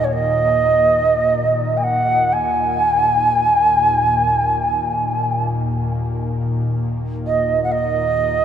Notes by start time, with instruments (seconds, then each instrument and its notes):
Already playing: ambient pad D#2 A#2
0.04 native american-style wooden flute C#5
0.12 native american-style wooden flute D#5
1.76 native american-style wooden flute G#5
1.83 native american-style wooden flute F#5
2.32 native american-style wooden flute G#5
4.41 ambient pad D#2 A#2
7.26 native american-style wooden flute D#5
7.63 native american-style wooden flute F#5
7.71 native american-style wooden flute D#5